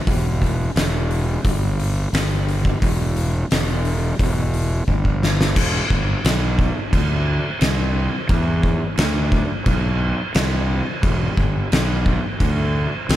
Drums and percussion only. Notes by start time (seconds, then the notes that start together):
0.07 kick, open hi-hat
0.42 kick, open hi-hat
0.76 snare, open hi-hat
1.11 open hi-hat
1.45 kick, open hi-hat
1.79 open hi-hat
2.14 snare, open hi-hat
2.48 open hi-hat
2.65 kick
2.82 kick, open hi-hat
3.16 open hi-hat
3.51 snare, open hi-hat
3.85 open hi-hat
4.19 kick, open hi-hat
4.54 open hi-hat
4.88 kick
5.05 kick
5.23 snare
5.41 snare
5.56 kick, crash
5.90 kick
6.25 snare, crash
6.59 kick
6.93 kick, crash
7.61 snare, crash
8.29 kick, crash
8.63 kick
8.97 snare, crash
9.32 kick
9.66 kick, crash
10.34 snare, crash
11.03 kick, crash
11.37 kick
11.72 snare, crash
12.06 kick
12.40 kick, crash
13.09 snare, crash